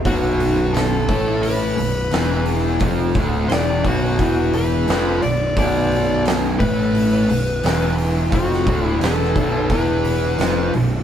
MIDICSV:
0, 0, Header, 1, 5, 480
1, 0, Start_track
1, 0, Tempo, 688863
1, 36, Time_signature, 4, 2, 24, 8
1, 7688, End_track
2, 0, Start_track
2, 0, Title_t, "Lead electric guitar"
2, 0, Program_c, 0, 29
2, 43, Note_on_c, 0, 66, 81
2, 511, Note_on_c, 0, 69, 95
2, 535, Note_off_c, 0, 66, 0
2, 990, Note_off_c, 0, 69, 0
2, 993, Note_on_c, 0, 71, 89
2, 1688, Note_off_c, 0, 71, 0
2, 2430, Note_on_c, 0, 74, 96
2, 2682, Note_off_c, 0, 74, 0
2, 2685, Note_on_c, 0, 66, 90
2, 3167, Note_on_c, 0, 71, 105
2, 3177, Note_off_c, 0, 66, 0
2, 3616, Note_off_c, 0, 71, 0
2, 3642, Note_on_c, 0, 74, 95
2, 3864, Note_off_c, 0, 74, 0
2, 3891, Note_on_c, 0, 74, 81
2, 4337, Note_off_c, 0, 74, 0
2, 4591, Note_on_c, 0, 71, 107
2, 5527, Note_off_c, 0, 71, 0
2, 5814, Note_on_c, 0, 66, 78
2, 6177, Note_off_c, 0, 66, 0
2, 6177, Note_on_c, 0, 64, 78
2, 6301, Note_off_c, 0, 64, 0
2, 6303, Note_on_c, 0, 69, 90
2, 6768, Note_off_c, 0, 69, 0
2, 6771, Note_on_c, 0, 71, 97
2, 7456, Note_off_c, 0, 71, 0
2, 7688, End_track
3, 0, Start_track
3, 0, Title_t, "Distorted electric guitar"
3, 0, Program_c, 1, 30
3, 33, Note_on_c, 1, 35, 103
3, 39, Note_on_c, 1, 47, 104
3, 748, Note_off_c, 1, 35, 0
3, 751, Note_off_c, 1, 47, 0
3, 757, Note_on_c, 1, 45, 73
3, 765, Note_on_c, 1, 57, 76
3, 1231, Note_off_c, 1, 45, 0
3, 1234, Note_off_c, 1, 57, 0
3, 1239, Note_on_c, 1, 35, 60
3, 1431, Note_off_c, 1, 35, 0
3, 1475, Note_on_c, 1, 40, 90
3, 1479, Note_on_c, 1, 52, 86
3, 1950, Note_off_c, 1, 40, 0
3, 1952, Note_off_c, 1, 52, 0
3, 1961, Note_on_c, 1, 41, 106
3, 1964, Note_on_c, 1, 53, 122
3, 2193, Note_off_c, 1, 41, 0
3, 2194, Note_off_c, 1, 53, 0
3, 2201, Note_on_c, 1, 38, 90
3, 2203, Note_on_c, 1, 50, 95
3, 2433, Note_off_c, 1, 38, 0
3, 2434, Note_off_c, 1, 50, 0
3, 2443, Note_on_c, 1, 40, 101
3, 2447, Note_on_c, 1, 52, 116
3, 2674, Note_off_c, 1, 40, 0
3, 2676, Note_off_c, 1, 52, 0
3, 2678, Note_on_c, 1, 35, 74
3, 2686, Note_on_c, 1, 47, 88
3, 2912, Note_off_c, 1, 35, 0
3, 2916, Note_off_c, 1, 47, 0
3, 2924, Note_on_c, 1, 40, 99
3, 2931, Note_on_c, 1, 52, 110
3, 3395, Note_off_c, 1, 40, 0
3, 3398, Note_off_c, 1, 52, 0
3, 3400, Note_on_c, 1, 41, 89
3, 3406, Note_on_c, 1, 53, 100
3, 3633, Note_off_c, 1, 41, 0
3, 3636, Note_off_c, 1, 53, 0
3, 3644, Note_on_c, 1, 35, 72
3, 3834, Note_off_c, 1, 35, 0
3, 3883, Note_on_c, 1, 35, 98
3, 3885, Note_on_c, 1, 47, 115
3, 4594, Note_off_c, 1, 35, 0
3, 4595, Note_off_c, 1, 47, 0
3, 4599, Note_on_c, 1, 45, 82
3, 4602, Note_on_c, 1, 57, 92
3, 5072, Note_off_c, 1, 45, 0
3, 5074, Note_off_c, 1, 57, 0
3, 5079, Note_on_c, 1, 35, 62
3, 5272, Note_off_c, 1, 35, 0
3, 5321, Note_on_c, 1, 40, 78
3, 5325, Note_on_c, 1, 52, 105
3, 5791, Note_off_c, 1, 40, 0
3, 5794, Note_on_c, 1, 41, 99
3, 5795, Note_off_c, 1, 52, 0
3, 5801, Note_on_c, 1, 53, 112
3, 6030, Note_off_c, 1, 41, 0
3, 6033, Note_off_c, 1, 53, 0
3, 6039, Note_on_c, 1, 38, 95
3, 6046, Note_on_c, 1, 50, 98
3, 6271, Note_off_c, 1, 38, 0
3, 6274, Note_on_c, 1, 40, 98
3, 6275, Note_off_c, 1, 50, 0
3, 6279, Note_on_c, 1, 52, 106
3, 6509, Note_off_c, 1, 40, 0
3, 6512, Note_off_c, 1, 52, 0
3, 6518, Note_on_c, 1, 35, 78
3, 6524, Note_on_c, 1, 47, 93
3, 6751, Note_off_c, 1, 35, 0
3, 6754, Note_off_c, 1, 47, 0
3, 6763, Note_on_c, 1, 40, 100
3, 6768, Note_on_c, 1, 52, 106
3, 7233, Note_off_c, 1, 40, 0
3, 7235, Note_off_c, 1, 52, 0
3, 7241, Note_on_c, 1, 41, 90
3, 7245, Note_on_c, 1, 53, 101
3, 7472, Note_off_c, 1, 41, 0
3, 7474, Note_off_c, 1, 53, 0
3, 7480, Note_on_c, 1, 35, 73
3, 7671, Note_off_c, 1, 35, 0
3, 7688, End_track
4, 0, Start_track
4, 0, Title_t, "Picked electric bass"
4, 0, Program_c, 2, 34
4, 37, Note_on_c, 2, 23, 95
4, 730, Note_off_c, 2, 23, 0
4, 756, Note_on_c, 2, 33, 92
4, 1209, Note_off_c, 2, 33, 0
4, 1234, Note_on_c, 2, 23, 72
4, 1459, Note_off_c, 2, 23, 0
4, 1476, Note_on_c, 2, 28, 90
4, 1930, Note_off_c, 2, 28, 0
4, 1955, Note_on_c, 2, 29, 89
4, 2180, Note_off_c, 2, 29, 0
4, 2198, Note_on_c, 2, 26, 98
4, 2422, Note_off_c, 2, 26, 0
4, 2435, Note_on_c, 2, 28, 93
4, 2660, Note_off_c, 2, 28, 0
4, 2678, Note_on_c, 2, 23, 93
4, 2902, Note_off_c, 2, 23, 0
4, 2921, Note_on_c, 2, 28, 96
4, 3372, Note_off_c, 2, 28, 0
4, 3399, Note_on_c, 2, 29, 98
4, 3622, Note_off_c, 2, 29, 0
4, 3639, Note_on_c, 2, 23, 76
4, 3863, Note_off_c, 2, 23, 0
4, 3878, Note_on_c, 2, 23, 90
4, 4571, Note_off_c, 2, 23, 0
4, 4602, Note_on_c, 2, 33, 103
4, 5053, Note_off_c, 2, 33, 0
4, 5075, Note_on_c, 2, 23, 73
4, 5300, Note_off_c, 2, 23, 0
4, 5316, Note_on_c, 2, 28, 89
4, 5770, Note_off_c, 2, 28, 0
4, 5799, Note_on_c, 2, 29, 95
4, 6022, Note_off_c, 2, 29, 0
4, 6039, Note_on_c, 2, 26, 102
4, 6262, Note_off_c, 2, 26, 0
4, 6276, Note_on_c, 2, 28, 90
4, 6500, Note_off_c, 2, 28, 0
4, 6521, Note_on_c, 2, 23, 93
4, 6743, Note_off_c, 2, 23, 0
4, 6758, Note_on_c, 2, 28, 96
4, 7210, Note_off_c, 2, 28, 0
4, 7233, Note_on_c, 2, 29, 85
4, 7458, Note_off_c, 2, 29, 0
4, 7473, Note_on_c, 2, 23, 68
4, 7688, Note_off_c, 2, 23, 0
4, 7688, End_track
5, 0, Start_track
5, 0, Title_t, "Drums"
5, 35, Note_on_c, 9, 46, 78
5, 36, Note_on_c, 9, 36, 105
5, 104, Note_off_c, 9, 46, 0
5, 106, Note_off_c, 9, 36, 0
5, 280, Note_on_c, 9, 46, 53
5, 350, Note_off_c, 9, 46, 0
5, 518, Note_on_c, 9, 46, 81
5, 536, Note_on_c, 9, 38, 112
5, 588, Note_off_c, 9, 46, 0
5, 605, Note_off_c, 9, 38, 0
5, 757, Note_on_c, 9, 46, 54
5, 758, Note_on_c, 9, 36, 96
5, 827, Note_off_c, 9, 36, 0
5, 827, Note_off_c, 9, 46, 0
5, 997, Note_on_c, 9, 46, 75
5, 1067, Note_off_c, 9, 46, 0
5, 1239, Note_on_c, 9, 46, 52
5, 1309, Note_off_c, 9, 46, 0
5, 1473, Note_on_c, 9, 46, 75
5, 1491, Note_on_c, 9, 38, 111
5, 1543, Note_off_c, 9, 46, 0
5, 1560, Note_off_c, 9, 38, 0
5, 1712, Note_on_c, 9, 46, 57
5, 1781, Note_off_c, 9, 46, 0
5, 1950, Note_on_c, 9, 46, 84
5, 1956, Note_on_c, 9, 36, 112
5, 2019, Note_off_c, 9, 46, 0
5, 2026, Note_off_c, 9, 36, 0
5, 2192, Note_on_c, 9, 46, 57
5, 2196, Note_on_c, 9, 36, 103
5, 2262, Note_off_c, 9, 46, 0
5, 2266, Note_off_c, 9, 36, 0
5, 2436, Note_on_c, 9, 46, 80
5, 2454, Note_on_c, 9, 38, 123
5, 2506, Note_off_c, 9, 46, 0
5, 2523, Note_off_c, 9, 38, 0
5, 2679, Note_on_c, 9, 36, 92
5, 2682, Note_on_c, 9, 46, 57
5, 2749, Note_off_c, 9, 36, 0
5, 2752, Note_off_c, 9, 46, 0
5, 2920, Note_on_c, 9, 36, 101
5, 2922, Note_on_c, 9, 46, 73
5, 2990, Note_off_c, 9, 36, 0
5, 2992, Note_off_c, 9, 46, 0
5, 3159, Note_on_c, 9, 46, 53
5, 3229, Note_off_c, 9, 46, 0
5, 3399, Note_on_c, 9, 46, 67
5, 3416, Note_on_c, 9, 38, 110
5, 3469, Note_off_c, 9, 46, 0
5, 3486, Note_off_c, 9, 38, 0
5, 3640, Note_on_c, 9, 46, 53
5, 3709, Note_off_c, 9, 46, 0
5, 3880, Note_on_c, 9, 36, 118
5, 3880, Note_on_c, 9, 46, 81
5, 3949, Note_off_c, 9, 36, 0
5, 3950, Note_off_c, 9, 46, 0
5, 4120, Note_on_c, 9, 46, 51
5, 4190, Note_off_c, 9, 46, 0
5, 4358, Note_on_c, 9, 46, 83
5, 4376, Note_on_c, 9, 38, 115
5, 4428, Note_off_c, 9, 46, 0
5, 4446, Note_off_c, 9, 38, 0
5, 4600, Note_on_c, 9, 36, 99
5, 4600, Note_on_c, 9, 46, 54
5, 4670, Note_off_c, 9, 36, 0
5, 4670, Note_off_c, 9, 46, 0
5, 4842, Note_on_c, 9, 46, 71
5, 4911, Note_off_c, 9, 46, 0
5, 5083, Note_on_c, 9, 46, 56
5, 5152, Note_off_c, 9, 46, 0
5, 5320, Note_on_c, 9, 46, 83
5, 5338, Note_on_c, 9, 38, 103
5, 5390, Note_off_c, 9, 46, 0
5, 5407, Note_off_c, 9, 38, 0
5, 5562, Note_on_c, 9, 46, 56
5, 5631, Note_off_c, 9, 46, 0
5, 5798, Note_on_c, 9, 46, 84
5, 5800, Note_on_c, 9, 36, 108
5, 5868, Note_off_c, 9, 46, 0
5, 5869, Note_off_c, 9, 36, 0
5, 5945, Note_on_c, 9, 38, 30
5, 6014, Note_off_c, 9, 38, 0
5, 6040, Note_on_c, 9, 36, 105
5, 6042, Note_on_c, 9, 46, 59
5, 6109, Note_off_c, 9, 36, 0
5, 6112, Note_off_c, 9, 46, 0
5, 6280, Note_on_c, 9, 46, 84
5, 6298, Note_on_c, 9, 38, 115
5, 6350, Note_off_c, 9, 46, 0
5, 6367, Note_off_c, 9, 38, 0
5, 6520, Note_on_c, 9, 36, 102
5, 6528, Note_on_c, 9, 46, 58
5, 6590, Note_off_c, 9, 36, 0
5, 6597, Note_off_c, 9, 46, 0
5, 6758, Note_on_c, 9, 36, 103
5, 6760, Note_on_c, 9, 46, 69
5, 6828, Note_off_c, 9, 36, 0
5, 6830, Note_off_c, 9, 46, 0
5, 7000, Note_on_c, 9, 46, 50
5, 7069, Note_off_c, 9, 46, 0
5, 7237, Note_on_c, 9, 46, 71
5, 7254, Note_on_c, 9, 38, 113
5, 7307, Note_off_c, 9, 46, 0
5, 7324, Note_off_c, 9, 38, 0
5, 7481, Note_on_c, 9, 46, 52
5, 7551, Note_off_c, 9, 46, 0
5, 7688, End_track
0, 0, End_of_file